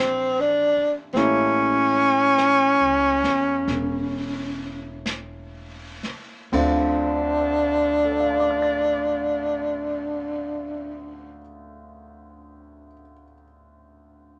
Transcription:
Already playing: A#1 E3 G3 A#3 C4 D4 E4
0.40 D4
0.77 muted upright bass stroke
1.13 A1 G3 A3 A#3 C4 C#4 E4, brush sweep, snare
2.38 brush sweep, snare, hi-hat pedal
2.80 C#2
3.23 E2, snare
3.67 E1, brush sweep, snare
5.06 brush sweep, snare, hi-hat pedal
6.03 muted upright bass stroke, snare
6.52 D2 D3 C4 D4 F4, kick, crash
6.57 D4
8.05 A4
8.12 D5
8.20 F5
8.30 A5
8.40 D6
8.50 F6
8.62 A6

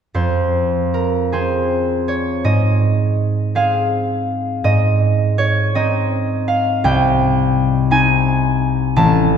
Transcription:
0.14 F2 C5
0.94 A#4
1.32 C4 G#4 C5
2.08 C#5
2.44 G#2 D#5
3.55 C4 G#4 F5
4.64 G#2 D#5
5.38 C#5
5.75 C4 D#4 D#5
6.48 F5
6.84 C2 G5
7.91 C4 D#4 G#5
8.96 A1 A5

